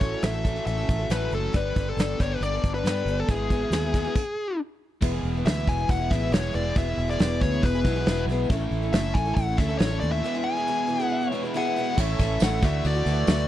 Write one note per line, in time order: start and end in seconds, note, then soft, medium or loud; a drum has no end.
0.00 0.14 A1 medium
0.00 0.43 A2 medium
0.00 0.43 E3 medium
0.00 0.12 F#3 soft
0.00 0.46 A3 medium
0.00 0.12 A3 medium
0.00 0.44 C#4 medium
0.00 0.12 C#4 medium
0.00 0.44 A4 medium
0.00 0.23 C#5 medium
0.00 kick medium
0.00 closed hi-hat medium
0.04 0.11 A4 medium
0.12 0.24 F#3 soft
0.12 0.24 A3 soft
0.12 0.24 C#4 soft
0.12 0.23 A4 soft
0.22 0.58 A1 medium
0.22 0.34 A2 medium
0.22 0.35 E3 medium
0.22 0.35 F#3 medium
0.22 0.35 A3 medium
0.22 0.35 C#4 medium
0.22 0.64 E5 medium
0.22 snare loud
0.22 closed hi-hat medium
0.26 0.33 A4 medium
0.34 0.44 F#3 soft
0.34 0.45 A3 soft
0.34 0.45 C#4 soft
0.34 0.45 A4 soft
0.45 1.08 A2 medium
0.45 1.09 E3 medium
0.45 0.55 F#3 medium
0.45 0.56 A3 medium
0.45 0.56 C#4 medium
0.45 0.55 A4 medium
0.45 kick medium
0.45 closed hi-hat medium
0.56 0.64 F#3 soft
0.56 0.66 A3 soft
0.56 0.66 C#4 soft
0.56 0.67 A4 medium
0.65 0.84 A1 medium
0.65 0.77 F#3 medium
0.65 0.77 A3 medium
0.65 0.78 C#4 medium
0.65 0.76 A4 medium
0.65 1.11 E5 medium
0.65 closed hi-hat medium
0.78 1.01 F#3 soft
0.78 1.00 A3 soft
0.78 0.99 C#4 soft
0.78 0.98 A4 soft
0.89 1.06 A1 medium
0.89 kick medium
0.89 closed hi-hat medium
0.99 1.09 F#3 soft
0.99 1.10 A3 soft
0.99 1.10 C#4 soft
0.99 1.10 A4 soft
1.10 1.27 A1 medium
1.10 1.32 A2 medium
1.10 1.32 E3 medium
1.10 1.30 F#3 medium
1.10 1.31 A3 medium
1.10 1.32 C#4 medium
1.10 1.33 A4 medium
1.10 1.31 B4 medium
1.10 snare loud
1.10 closed hi-hat medium
1.31 1.49 F#1 medium
1.31 1.52 F#3 soft
1.31 1.54 A3 soft
1.31 1.54 C#4 medium
1.31 1.54 A4 medium
1.31 1.55 A4 medium
1.31 closed hi-hat soft
1.53 1.72 G1 medium
1.53 2.17 G2 medium
1.53 2.18 D3 medium
1.53 1.74 G3 medium
1.53 1.75 B3 medium
1.53 1.75 D4 medium
1.53 2.17 G4 medium
1.53 1.76 A4 medium
1.53 1.88 B4 medium
1.53 kick medium
1.53 closed hi-hat medium
1.75 1.93 G1 medium
1.75 1.86 G3 medium
1.75 1.87 B3 medium
1.75 1.86 D4 medium
1.75 1.85 A4 medium
1.75 kick medium
1.75 closed hi-hat medium
1.86 1.97 B3 soft
1.86 1.98 D4 soft
1.86 1.97 A4 soft
1.86 2.21 A4 medium
1.97 2.14 G1 medium
1.97 2.17 G3 medium
1.97 2.19 B3 medium
1.97 2.20 D4 medium
1.97 2.20 A4 medium
1.97 snare loud
1.97 closed hi-hat medium
2.18 2.37 G1 medium
2.18 2.83 G2 medium
2.18 2.83 D3 medium
2.18 2.30 G3 medium
2.18 2.30 B3 medium
2.18 2.31 D4 medium
2.18 2.83 G4 medium
2.18 2.29 A4 medium
2.18 2.32 C#5 medium
2.18 kick medium
2.18 closed hi-hat medium
2.31 2.42 D4 soft
2.31 2.41 A4 soft
2.31 2.43 B4 medium
2.40 2.58 G1 medium
2.40 2.52 G3 medium
2.40 2.52 B3 medium
2.40 2.53 D4 medium
2.40 2.52 A4 medium
2.40 2.74 D5 medium
2.40 closed hi-hat medium
2.53 2.76 B3 soft
2.53 2.75 D4 soft
2.53 2.73 A4 soft
2.63 2.81 G1 medium
2.63 kick medium
2.63 closed hi-hat medium
2.74 2.85 B3 soft
2.74 2.85 D4 soft
2.74 2.85 A4 soft
2.74 3.19 B4 medium
2.84 3.02 G2 medium
2.84 3.27 G2 medium
2.84 3.27 D3 medium
2.84 3.05 G3 medium
2.84 3.07 B3 medium
2.84 3.07 D4 medium
2.84 3.28 G4 medium
2.84 3.07 A4 medium
2.84 snare loud
2.84 closed hi-hat medium
3.05 3.23 G1 medium
3.05 3.28 G3 medium
3.05 3.28 B3 medium
3.05 3.29 D4 medium
3.05 closed hi-hat medium
3.09 3.30 A4 medium
3.20 3.31 A4 medium
3.28 3.63 G#1 medium
3.28 3.49 G#3 medium
3.28 3.50 B3 medium
3.28 3.51 E4 medium
3.28 3.51 G#4 medium
3.28 4.60 G#4 medium
3.28 kick medium
3.28 closed hi-hat medium
3.50 3.61 G#3 medium
3.50 3.61 B3 medium
3.50 3.62 E4 medium
3.50 3.60 G#4 medium
3.50 kick medium
3.50 closed hi-hat medium
3.61 3.72 B3 soft
3.61 3.72 E4 soft
3.61 3.72 G#4 soft
3.70 4.06 D#2 medium
3.70 3.83 G#3 medium
3.70 3.83 B3 medium
3.70 3.83 E4 medium
3.70 snare loud
3.70 closed hi-hat medium
3.75 3.81 G#4 medium
3.83 3.94 B3 soft
3.83 3.94 E4 soft
3.83 3.93 G#4 medium
3.92 4.04 G#3 medium
3.92 4.05 B3 medium
3.92 4.13 G#4 medium
3.92 kick medium
3.92 closed hi-hat medium
3.96 4.06 E4 medium
3.96 4.03 G#4 medium
4.05 4.17 B3 soft
4.05 4.16 E4 soft
4.05 4.15 G#4 medium
4.16 kick medium
4.16 crash medium
5.01 5.21 E1 medium
5.01 6.09 E2 medium
5.01 6.09 B2 medium
5.01 5.13 E3 medium
5.01 6.10 G#3 medium
5.01 5.13 B3 medium
5.01 5.13 E4 medium
5.01 5.11 G#4 medium
5.01 kick loud
5.01 crash medium
5.12 5.36 B3 soft
5.12 5.35 E4 soft
5.12 5.33 G#4 medium
5.23 5.42 E1 medium
5.23 open hi-hat soft
5.34 5.44 B3 soft
5.34 5.46 E4 soft
5.34 5.45 G#4 soft
5.45 5.64 D2 medium
5.45 5.67 E3 medium
5.45 5.67 B3 medium
5.45 5.68 E4 medium
5.45 5.68 G#4 medium
5.45 5.68 E5 medium
5.45 snare loud
5.45 open hi-hat medium
5.67 5.86 E1 medium
5.67 5.79 E3 medium
5.67 5.79 B3 medium
5.67 5.78 E4 medium
5.67 5.90 G#5 medium
5.67 kick medium
5.67 open hi-hat medium
5.71 5.77 G#4 medium
5.78 6.01 B3 soft
5.78 6.00 E4 soft
5.78 5.98 G#4 medium
5.89 6.08 E1 medium
5.89 6.10 F#5 loud
5.89 kick medium
5.89 open hi-hat medium
5.99 6.10 B3 soft
5.99 6.11 E4 soft
5.99 6.11 G#4 medium
6.10 6.30 A1 medium
6.10 6.32 E2 medium
6.10 6.32 B2 medium
6.10 6.21 E3 medium
6.10 6.31 G#3 medium
6.10 6.22 B3 medium
6.10 6.21 E4 medium
6.10 6.20 G#4 medium
6.10 6.33 E5 medium
6.10 kick medium
6.10 open hi-hat medium
6.21 6.32 B3 soft
6.21 6.33 E4 soft
6.21 6.32 G#4 soft
6.32 6.51 E1 medium
6.32 6.74 E2 medium
6.32 6.74 B2 medium
6.32 6.52 E3 medium
6.32 6.76 G#3 medium
6.32 6.53 B3 medium
6.32 6.54 E4 medium
6.32 6.55 G#4 medium
6.32 6.55 C#5 medium
6.32 snare loud
6.32 open hi-hat medium
6.53 6.73 E1 medium
6.53 6.75 E3 medium
6.53 6.75 B3 medium
6.53 6.76 E4 medium
6.53 6.77 G#4 medium
6.53 6.77 D5 medium
6.53 open hi-hat medium
6.75 6.95 E1 medium
6.75 7.83 E2 medium
6.75 7.83 B2 medium
6.75 6.87 E3 medium
6.75 7.84 G#3 medium
6.75 6.87 B3 medium
6.75 6.87 E4 medium
6.75 6.85 G#4 medium
6.75 7.10 E5 medium
6.75 kick loud
6.75 open hi-hat medium
6.86 7.09 B3 soft
6.86 7.08 E4 soft
6.86 7.07 G#4 soft
6.97 7.16 E1 medium
6.97 open hi-hat medium
7.08 7.19 B3 soft
7.08 7.19 E4 soft
7.08 7.19 G#4 medium
7.08 7.42 D5 medium
7.08 snare soft
7.19 7.39 E1 medium
7.19 7.39 E3 medium
7.19 7.41 B3 medium
7.19 7.42 E4 medium
7.19 7.42 G#4 medium
7.19 snare loud
7.19 open hi-hat medium
7.41 7.60 D2 medium
7.41 7.52 E3 medium
7.41 7.53 B3 medium
7.41 7.53 E4 medium
7.41 7.51 G#4 medium
7.41 7.64 C#5 medium
7.41 kick medium
7.41 open hi-hat medium
7.52 7.75 B3 soft
7.52 7.74 E4 soft
7.52 7.74 G#4 medium
7.63 7.82 E1 medium
7.63 8.24 B4 medium
7.63 kick medium
7.63 open hi-hat medium
7.75 7.85 B3 soft
7.75 7.86 E4 soft
7.75 7.85 G#4 medium
7.84 8.04 B1 medium
7.84 8.04 E2 medium
7.84 8.05 B2 medium
7.84 7.96 E3 medium
7.84 8.05 G#3 medium
7.84 7.96 B3 medium
7.84 7.96 E4 medium
7.84 kick medium
7.84 open hi-hat medium
7.88 7.94 G#4 medium
7.96 8.07 B3 soft
7.96 8.07 E4 soft
7.96 8.06 G#4 medium
8.06 8.25 E1 medium
8.06 8.48 E2 medium
8.06 8.49 B2 medium
8.06 8.28 E3 medium
8.06 8.49 G#3 medium
8.06 8.29 B3 medium
8.06 8.29 E4 medium
8.06 8.29 G#4 medium
8.06 snare loud
8.06 open hi-hat medium
8.26 8.46 B1 medium
8.26 8.49 E3 medium
8.26 open hi-hat soft
8.31 8.50 B3 medium
8.31 8.51 E4 medium
8.31 8.52 G#4 medium
8.50 8.69 A1 medium
8.50 8.61 A2 medium
8.50 8.61 E3 medium
8.50 8.61 A3 medium
8.50 8.61 C#4 medium
8.50 8.61 E4 medium
8.50 8.59 A4 medium
8.50 kick loud
8.50 open hi-hat medium
8.60 8.84 A3 medium
8.60 8.83 C#4 medium
8.60 8.82 E4 medium
8.60 8.81 A4 medium
8.71 8.90 A1 medium
8.71 open hi-hat soft
8.82 8.94 A3 soft
8.82 8.94 C#4 medium
8.82 8.94 E4 medium
8.82 8.93 A4 soft
8.93 9.12 F#1 medium
8.93 9.15 A2 medium
8.93 9.16 E3 medium
8.93 9.14 A3 medium
8.93 9.14 C#4 medium
8.93 9.15 E4 medium
8.93 9.16 A4 medium
8.93 9.15 E5 medium
8.93 snare loud
8.93 open hi-hat medium
9.14 9.34 A1 medium
9.14 9.26 A3 medium
9.14 9.26 C#4 medium
9.14 9.26 E4 medium
9.14 9.24 A4 medium
9.14 9.35 G#5 loud
9.14 kick medium
9.14 open hi-hat soft
9.26 9.49 A3 soft
9.26 9.48 C#4 soft
9.26 9.47 E4 medium
9.26 9.47 A4 medium
9.35 9.55 A1 medium
9.35 9.58 F#5 loud
9.35 kick medium
9.35 open hi-hat medium
9.48 9.57 A3 soft
9.48 9.58 C#4 soft
9.48 9.59 E4 soft
9.48 9.59 A4 soft
9.57 9.77 D2 medium
9.57 9.78 A2 medium
9.57 9.79 E3 medium
9.57 9.69 A3 medium
9.57 9.69 C#4 medium
9.57 9.69 E4 medium
9.57 9.78 E5 medium
9.57 kick medium
9.57 open hi-hat medium
9.62 9.67 A4 medium
9.68 9.79 A3 soft
9.68 9.80 C#4 soft
9.68 9.80 E4 soft
9.68 9.80 A4 medium
9.78 9.99 A1 medium
9.78 9.91 A2 medium
9.78 9.91 E3 medium
9.78 9.91 A3 medium
9.78 9.91 C#4 medium
9.78 9.90 E4 medium
9.78 9.89 A4 medium
9.78 9.99 C#5 medium
9.78 snare loud
9.78 open hi-hat medium
9.90 10.00 A3 soft
9.90 10.02 C#4 soft
9.90 10.02 E4 soft
9.90 10.02 A4 soft
10.00 10.21 D#2 medium
10.00 10.23 A3 medium
10.00 10.24 C#4 medium
10.00 10.25 E4 medium
10.00 10.11 D5 medium
10.00 open hi-hat medium
10.05 10.25 A4 medium
10.12 10.43 E5 medium
10.23 11.30 E2 medium
10.23 11.30 B2 medium
10.23 10.35 E3 medium
10.23 11.31 G#3 loud
10.23 10.35 B3 medium
10.23 10.35 E4 medium
10.23 10.33 G#4 medium
10.34 10.57 B3 soft
10.34 10.57 E4 medium
10.34 10.56 G#4 medium
10.44 11.04 G#5 medium
10.57 10.67 B3 soft
10.57 10.67 E4 soft
10.57 10.67 G#4 medium
10.68 10.86 E3 medium
10.68 10.87 B3 medium
10.68 10.88 E4 medium
10.68 10.89 G#4 medium
10.87 10.99 E3 medium
10.87 10.99 B3 medium
10.87 11.00 E4 medium
10.87 10.98 G#4 medium
10.99 11.23 B3 medium
10.99 11.22 E4 medium
10.99 11.20 G#4 medium
11.04 11.27 F#5 medium
11.12 11.25 E5 medium
11.21 11.32 B3 soft
11.21 11.33 E4 medium
11.21 11.32 G#4 medium
11.27 11.43 C#5 medium
11.32 11.52 E2 medium
11.32 11.53 B2 medium
11.32 11.43 E3 medium
11.32 11.53 G#3 medium
11.32 11.43 B3 medium
11.32 11.44 E4 medium
11.32 11.43 G#4 medium
11.43 11.55 E4 medium
11.43 11.54 G#4 medium
11.43 11.55 B4 medium
11.47 11.54 B3 soft
11.53 11.95 E2 medium
11.53 11.95 B2 medium
11.53 11.65 E3 medium
11.53 11.96 G#3 medium
11.53 11.65 B3 medium
11.53 11.66 E4 medium
11.53 11.64 G#4 loud
11.57 11.88 G#4 medium
11.57 12.00 F#5 loud
11.65 11.76 B3 soft
11.65 11.77 E4 soft
11.65 11.76 G#4 medium
11.76 11.98 E3 medium
11.76 11.98 B3 medium
11.76 11.99 E4 medium
11.76 11.99 G#4 medium
11.95 12.17 A1 medium
11.95 12.19 A2 medium
11.95 12.20 E3 medium
11.95 12.17 A3 medium
11.95 12.60 E4 medium
11.95 12.40 E4 medium
11.95 12.61 A4 medium
11.95 12.40 A4 medium
11.95 12.61 C#5 medium
11.95 12.41 C#5 medium
11.95 12.61 E5 medium
11.95 kick loud
11.95 crash loud
11.95 crash medium
11.99 12.18 C#4 medium
11.99 12.19 E4 medium
11.99 12.20 A4 medium
11.99 12.43 E5 loud
12.19 12.38 A1 medium
12.19 12.40 A3 medium
12.19 12.41 C#4 medium
12.19 12.41 E4 medium
12.19 12.42 A4 medium
12.19 kick medium
12.19 crash medium
12.40 12.60 A1 medium
12.40 12.63 A2 medium
12.40 12.61 E3 medium
12.40 12.62 A3 medium
12.40 12.63 C#4 medium
12.40 12.63 E4 medium
12.40 12.64 A4 medium
12.40 12.64 F#5 loud
12.40 snare loud
12.40 tambourine loud
12.40 crash medium
12.51 12.60 E4 medium
12.51 12.61 A4 medium
12.51 12.61 E5 medium
12.61 12.82 D2 medium
12.61 13.47 D3 medium
12.61 12.82 E3 medium
12.61 12.83 A3 medium
12.61 13.48 D4 loud
12.61 13.32 E4 medium
12.61 12.85 E4 medium
12.61 13.48 F#4 medium
12.61 13.32 F#4 medium
12.61 13.48 D5 medium
12.61 13.32 D5 medium
12.61 12.85 E5 loud
12.61 kick loud
12.61 crash medium
12.65 12.85 F#4 medium
12.83 13.04 D2 medium
12.83 12.94 E3 medium
12.83 12.95 A3 medium
12.83 12.94 E4 medium
12.83 12.93 F#4 medium
12.83 13.48 D5 loud
12.83 crash medium
12.94 13.05 A3 soft
12.94 13.06 E4 medium
12.94 13.05 F#4 medium
13.05 13.25 D2 medium
13.05 13.27 E3 medium
13.05 13.27 A3 medium
13.05 13.28 E4 medium
13.05 13.28 F#4 medium
13.05 crash medium
13.27 13.47 D2 medium
13.27 13.48 D3 medium
13.27 13.47 E3 medium
13.27 13.48 A3 medium
13.27 13.48 E4 medium
13.27 13.48 F#4 medium
13.27 snare loud
13.27 tambourine medium
13.27 crash medium